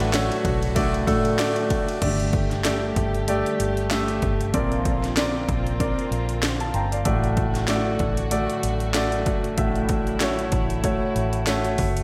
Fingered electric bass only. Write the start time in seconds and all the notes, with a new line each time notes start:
0.00 A1
0.45 B1
1.07 A2
2.02 G1
2.96 G1
3.60 G1
4.22 G1
4.54 A#1
5.49 A#1
6.11 A#1
6.74 G1
7.06 A1
8.00 A1
8.63 A1
9.26 G1
9.58 A1
10.52 A1
11.16 A1
11.79 F#1